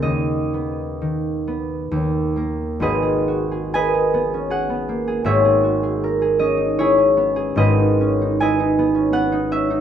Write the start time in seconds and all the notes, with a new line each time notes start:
Already playing: G#4
0.02 D#2 D#5
0.54 B3
1.02 D#3
1.47 B3
1.91 D#2
2.36 A#3 A#4
2.80 G#1 G#2 G#4 B4 D#5
3.02 G#4
3.28 F#4
3.51 G#4
3.73 A#4 B4 D#5 G#5
3.94 G#4
4.14 B3
4.34 C#4
4.50 G#4 F#5
4.70 B3
4.89 A#3
5.07 G#4
5.24 G#1 G#2 G#4 C#5 E5
5.44 G#4
5.63 F#4
5.83 G#4
6.04 A#4
6.22 G#4
6.39 C#4 D#5
6.57 D#4
6.79 E4 G#4 C#5
6.97 C#4
7.17 B3
7.36 G#4
7.56 G#1 G#2 G#4 B4 D#5
7.78 D#4
8.01 C#4
8.22 D#4
8.40 E4 B4 D#5 G#5
8.60 D#4
8.79 B3
8.94 C#4
9.12 B3 F#5
9.32 D#4
9.51 C#4 E5
9.70 D#4